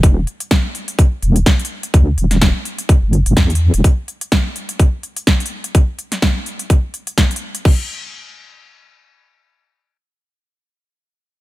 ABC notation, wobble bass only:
X:1
M:4/4
L:1/16
Q:"Swing 16ths" 1/4=126
K:Em
V:1 name="Wobble bass" clef=bass
E,,,2 z8 E,,,2 z4 | D,,2 E,,,3 z4 G,,,2 G,,, E,,3 E,,, | z16 | z16 |
z16 | z16 |]